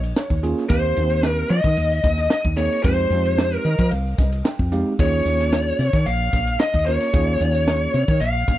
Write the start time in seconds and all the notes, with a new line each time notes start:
Already playing: A#1 D#5
0.03 ride
0.16 C#5, snare, ride
0.30 D#2, kick
0.43 A#3 C#4 F4 G#4, hi-hat pedal, ride
0.57 snare
0.69 D#2 A#3 C4 D#4 G4 C5, kick, ride
0.97 D#2, hi-hat pedal, ride
1.10 ride
1.23 snare, ride
1.29 A#4
1.50 F3 D#5, hi-hat pedal, ride
1.64 D#3, kick
1.77 D#2, ride
2.03 D#2, kick, hi-hat pedal, ride
2.17 snare, ride
2.30 D#5, snare, ride
2.45 D#2, kick
2.56 A#3 C4 D#4 G#4 C#5, hi-hat pedal, ride
2.71 ride
2.83 F2 G#3 C4 D#4 G4 C5, kick, ride
3.10 F2, hi-hat pedal, ride
3.25 ride
3.38 snare, ride
3.55 A#4
3.65 D#3 D#5, hi-hat pedal, ride
3.79 F3, kick, ride
3.91 C2 F5, ride
4.18 C2 D#5, kick, hi-hat pedal, ride
4.32 ride
4.45 G5, snare, ride
4.59 F2, kick
4.72 G#3 C4 D#4 G4 F5, hi-hat pedal, ride
4.99 D#2 A#3 C#4 F4 G#4 C#5, kick, ride
5.25 D#2, hi-hat pedal, ride
5.40 snare, ride
5.53 snare, ride
5.79 C3, hi-hat pedal, ride
5.93 D#3, kick, snare
6.06 A#1 F5, ride
6.33 A#1, kick, hi-hat pedal, ride
6.47 ride
6.60 D#5, snare, ride
6.74 D#2, kick
6.86 A#3 C#4 F4 A#4 C#5, hi-hat pedal, ride
7.00 snare, ride
7.13 D#2 A#3 C#4 F4 G#4, kick, ride
7.40 D#2, hi-hat pedal, ride
7.55 ride
7.68 snare, ride
7.94 C3, hi-hat pedal, ride
8.08 D#3, kick, ride
8.20 A#1 F5, ride
8.48 A#1, kick, hi-hat pedal, ride